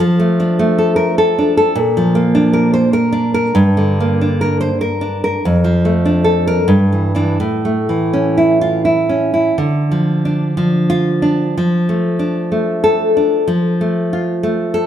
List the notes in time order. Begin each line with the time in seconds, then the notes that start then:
0.00 F3
0.20 A3
0.40 D4
0.59 A3
0.78 A4
0.96 A#4
1.18 A4
1.39 D4
1.57 A4
1.75 A#2
1.97 F3
2.15 A#3
2.35 D4
2.53 A#4
2.74 C5
2.93 A#4
3.12 D4
3.34 A#4
3.55 G2
3.77 D3
4.00 A#3
4.21 D4
4.41 A#4
4.61 C5
4.81 A#4
5.01 D4
5.24 A#4
5.45 F2
5.64 F3
5.85 A3
6.05 D4
6.24 A4
6.47 A#4
6.68 G2
6.92 E3
7.15 E3 D4
7.40 A2
7.65 A3
7.89 E3
8.13 C#4
8.37 E4
8.61 F4
8.85 E4
9.09 C#4
9.34 E4
9.58 D3
9.91 F3
10.25 D4
10.57 F3
10.90 F4
11.22 D4
11.57 F3
11.89 A3
12.19 D4
12.52 A3
12.84 A4
13.17 D4
13.47 F3
13.81 A3
14.13 F4
14.43 A3
14.74 A4